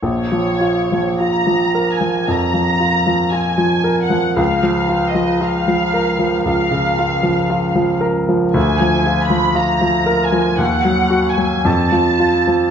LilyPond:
<<
  \new Staff \with { instrumentName = "Violin section" } { \time 4/4 \key bes \minor \tempo 4 = 57 des''4 \tuplet 3/2 { bes''4 aes''8 } bes''4 \tuplet 3/2 { aes''4 ges''8 } | \tuplet 3/2 { f''4 ees''8 } f''4 f''4. r8 | \tuplet 3/2 { aes''4 ces'''8 bes''4 aes''8 ges''4 aes''8 } a''4 | }
  \new Staff \with { instrumentName = "Grand piano" } { \clef bass \time 4/4 \key bes \minor bes,,16 f16 f'16 f16 f'16 f16 bes'16 f16 f,16 f16 f'16 f16 f'16 f16 bes'16 f16 | des,16 f16 f'16 f16 f'16 f16 bes'16 f16 des,16 des16 f'16 f16 f'16 f16 bes'16 f16 | d,16 f16 f'16 f16 f'16 f16 bes'16 f16 ees,16 ges16 ges'16 ges16 f,16 f16 f'16 f16 | }
>>